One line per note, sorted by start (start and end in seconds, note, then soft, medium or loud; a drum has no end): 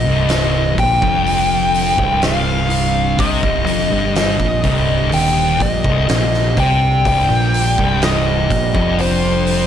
0.00 9.67 C3 medium
0.00 9.67 D3 medium
0.00 9.67 G3 medium
0.00 0.75 D#5 medium
0.07 0.75 C1 loud
0.07 0.77 C2 loud
0.29 snare loud
0.29 open hi-hat medium
0.78 1.01 A#1 loud
0.78 1.01 A#2 loud
0.78 2.25 G5 loud
0.78 kick loud
0.78 open hi-hat medium
1.02 1.95 F1 medium
1.02 1.98 F2 medium
1.02 kick loud
1.26 open hi-hat medium
1.75 open hi-hat medium
1.98 3.15 C1 loud
1.98 3.17 C2 loud
1.98 kick loud
2.22 3.23 F5 loud
2.22 snare loud
2.22 open hi-hat medium
2.70 open hi-hat medium
3.19 3.41 C2 medium
3.19 3.42 C3 loud
3.19 4.12 D#5 medium
3.19 kick loud
3.19 open hi-hat medium
3.43 3.65 C1 loud
3.43 3.66 C2 loud
3.43 kick loud
3.67 3.90 F1 medium
3.67 3.90 F2 loud
3.67 open hi-hat medium
3.91 4.36 G1 loud
3.91 4.38 G2 loud
4.16 5.15 D#5 medium
4.16 snare loud
4.16 open hi-hat medium
4.39 4.62 A#1 medium
4.39 4.62 A#2 loud
4.39 kick loud
4.64 5.09 C1 loud
4.64 5.10 C2 loud
4.64 kick medium
4.64 open hi-hat medium
5.12 5.57 D#1 medium
5.12 5.59 D#2 loud
5.12 5.62 G5 medium
5.12 open hi-hat medium
5.60 5.83 A#1 loud
5.60 5.83 A#2 loud
5.60 6.60 D#5 loud
5.60 kick loud
5.60 open hi-hat medium
5.83 6.07 C1 medium
5.83 6.07 C2 medium
5.83 kick loud
6.08 6.54 A#1 medium
6.08 6.55 A#2 loud
6.08 snare loud
6.08 open hi-hat medium
6.34 snare soft
6.57 7.02 C2 medium
6.57 7.04 C3 loud
6.57 7.07 G5 loud
6.57 kick loud
6.57 open hi-hat medium
7.05 7.28 C1 loud
7.05 7.28 C2 loud
7.05 8.06 G5 medium
7.05 kick loud
7.05 open hi-hat medium
7.30 7.74 A#1 loud
7.30 7.76 A#2 loud
7.54 open hi-hat medium
7.78 8.47 C1 loud
7.78 8.49 C2 loud
7.78 kick medium
8.02 8.95 D#5 medium
8.02 snare loud
8.02 open hi-hat medium
8.50 8.73 A#1 medium
8.50 8.73 A#2 loud
8.50 kick loud
8.50 open hi-hat medium
8.75 9.67 F1 loud
8.75 9.67 F2 loud
8.75 kick loud
8.99 9.67 C5 medium
8.99 open hi-hat medium
9.47 open hi-hat medium